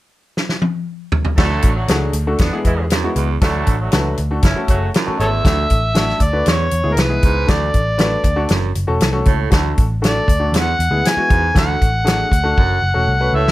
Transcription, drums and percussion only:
0.37 snare medium
0.49 snare medium
0.62 high tom medium
1.12 floor tom loud
1.25 floor tom medium
1.38 kick loud
1.38 snare loud
1.38 crash medium
1.62 kick medium
1.62 closed hi-hat medium
1.88 snare medium
1.88 closed hi-hat medium
2.13 closed hi-hat medium
2.38 kick medium
2.38 snare loud
2.38 closed hi-hat medium
2.65 kick medium
2.65 closed hi-hat medium
2.90 snare loud
2.90 closed hi-hat medium
3.16 closed hi-hat medium
3.41 kick loud
3.41 snare loud
3.41 closed hi-hat medium
3.67 kick medium
3.67 closed hi-hat medium
3.92 snare loud
3.92 closed hi-hat medium
4.17 closed hi-hat medium
4.42 kick medium
4.42 snare medium
4.42 closed hi-hat medium
4.68 kick medium
4.68 closed hi-hat medium
4.94 snare loud
4.94 closed hi-hat medium
5.20 closed hi-hat medium
5.45 kick loud
5.45 snare loud
5.45 closed hi-hat medium
5.70 kick medium
5.70 closed hi-hat medium
5.95 snare loud
5.95 closed hi-hat medium
6.09 snare soft
6.20 kick medium
6.20 closed hi-hat medium
6.46 snare medium
6.46 closed hi-hat medium
6.71 closed hi-hat medium
6.97 snare medium
6.97 closed hi-hat medium
7.23 kick medium
7.23 closed hi-hat medium
7.48 kick loud
7.48 snare loud
7.48 closed hi-hat medium
7.74 kick medium
7.74 closed hi-hat medium
7.99 snare loud
7.99 closed hi-hat medium
8.24 kick medium
8.24 closed hi-hat medium
8.49 snare loud
8.49 closed hi-hat medium
8.75 closed hi-hat medium
9.00 snare loud
9.00 closed hi-hat medium
9.25 kick medium
9.25 closed hi-hat medium
9.51 kick medium
9.51 snare loud
9.51 closed hi-hat medium
9.78 kick medium
9.78 closed hi-hat medium
10.04 snare loud
10.04 closed hi-hat medium
10.28 kick medium
10.28 closed hi-hat medium
10.54 snare loud
10.54 closed hi-hat medium
10.80 closed hi-hat medium
11.05 snare medium
11.05 closed hi-hat medium
11.30 kick medium
11.30 closed hi-hat medium
11.56 kick loud
11.56 snare loud
11.56 closed hi-hat medium
11.82 kick medium
11.82 closed hi-hat medium
12.07 snare loud
12.07 closed hi-hat medium
12.32 kick medium
12.32 closed hi-hat medium
12.58 kick medium
13.48 snare medium

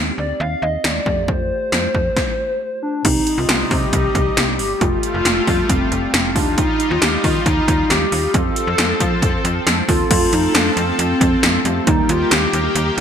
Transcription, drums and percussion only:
0.84 snare loud
1.06 kick medium
1.28 kick loud
1.72 snare loud
1.95 kick medium
2.17 kick loud
2.17 snare medium
3.05 kick loud
3.05 closed hi-hat medium
3.05 crash medium
3.27 closed hi-hat medium
3.49 snare loud
3.49 closed hi-hat medium
3.71 kick medium
3.71 open hi-hat medium
3.93 kick loud
3.93 closed hi-hat medium
4.15 kick medium
4.15 closed hi-hat medium
4.37 snare loud
4.37 closed hi-hat medium
4.59 open hi-hat medium
4.81 kick loud
4.81 closed hi-hat medium
5.03 closed hi-hat medium
5.25 snare loud
5.25 closed hi-hat medium
5.47 kick medium
5.47 open hi-hat medium
5.69 kick loud
5.69 closed hi-hat medium
5.92 closed hi-hat medium
6.14 snare loud
6.14 closed hi-hat medium
6.36 kick medium
6.36 open hi-hat medium
6.58 kick loud
6.58 closed hi-hat medium
6.80 closed hi-hat medium
7.02 snare loud
7.02 closed hi-hat medium
7.24 kick medium
7.24 open hi-hat medium
7.46 kick loud
7.46 closed hi-hat medium
7.68 kick loud
7.68 closed hi-hat medium
7.90 snare loud
7.90 closed hi-hat medium
8.12 open hi-hat medium
8.34 kick loud
8.34 closed hi-hat medium
8.56 closed hi-hat medium
8.78 snare loud
8.78 closed hi-hat medium
9.00 kick medium
9.00 closed hi-hat medium
9.22 kick loud
9.22 closed hi-hat medium
9.45 closed hi-hat medium
9.67 snare loud
9.67 closed hi-hat medium
9.89 kick loud
9.89 open hi-hat medium
10.11 kick loud
10.11 closed hi-hat medium
10.11 crash loud
10.33 closed hi-hat medium
10.55 snare loud
10.55 closed hi-hat medium
10.77 closed hi-hat medium
10.99 closed hi-hat medium
11.21 kick loud
11.21 closed hi-hat medium
11.43 snare loud
11.43 closed hi-hat medium
11.65 closed hi-hat medium
11.87 kick loud
11.87 closed hi-hat medium
12.09 closed hi-hat medium
12.31 snare loud
12.31 closed hi-hat medium
12.53 closed hi-hat medium
12.76 closed hi-hat medium

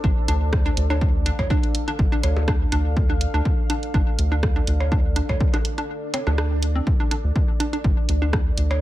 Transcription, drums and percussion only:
0.04 kick loud
0.28 closed hi-hat medium
0.53 kick loud
0.53 cross-stick loud
0.77 closed hi-hat medium
0.90 percussion blips medium
1.01 kick loud
1.26 closed hi-hat medium
1.39 kick medium
1.39 percussion blips medium
1.50 kick loud
1.63 closed hi-hat soft
1.75 closed hi-hat medium
1.88 closed hi-hat soft
1.99 kick loud
2.23 closed hi-hat medium
2.23 percussion blips medium
2.37 percussion blips medium
2.48 kick loud
2.48 cross-stick loud
2.72 closed hi-hat medium
2.97 kick loud
3.21 closed hi-hat medium
3.45 kick loud
3.70 closed hi-hat medium
3.83 closed hi-hat soft
3.94 kick loud
4.19 closed hi-hat medium
4.43 kick loud
4.43 cross-stick loud
4.67 closed hi-hat medium
4.80 percussion blips medium
4.92 kick loud
5.16 closed hi-hat medium
5.29 kick medium
5.29 percussion blips medium
5.40 kick loud
5.54 closed hi-hat soft
5.54 percussion blips medium
5.65 closed hi-hat medium
5.78 closed hi-hat soft
6.14 closed hi-hat medium
6.14 percussion blips medium
6.27 percussion blips medium
6.38 cross-stick loud
6.63 closed hi-hat medium
6.87 kick loud
7.11 closed hi-hat medium
7.36 kick loud
7.60 closed hi-hat medium
7.73 closed hi-hat soft
7.84 kick loud
8.09 closed hi-hat medium
8.33 kick loud
8.33 cross-stick loud
8.58 closed hi-hat medium
8.71 percussion blips medium

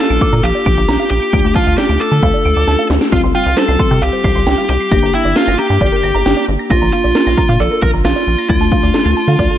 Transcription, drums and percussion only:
0.21 kick medium
0.66 kick medium
0.89 snare loud
1.33 kick loud
1.55 kick medium
1.78 snare loud
2.23 kick medium
2.68 snare medium
2.90 snare medium
3.01 snare medium
3.12 kick loud
3.57 snare loud
3.79 kick medium
4.24 kick loud
4.47 snare loud
4.92 kick loud
5.36 snare loud
5.81 kick medium
6.26 snare loud
6.71 kick loud
7.15 snare loud
7.38 kick medium
7.82 kick loud
8.05 snare loud
8.50 kick loud
8.72 kick loud
8.94 snare loud
9.39 kick medium

